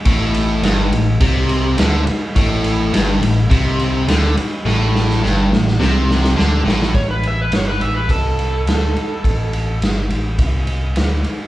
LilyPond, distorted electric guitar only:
\new Staff \with { instrumentName = "Distorted electric guitar" } { \clef bass \time 4/4 \key g \lydian \tempo 4 = 105 a,4 g,8 a,8 c4 d8 r8 | a,4 g,8 a,8 c4 d8 r8 | a,4 g,8 a,8 c4 d8 a,8 | r1 |
r1 | }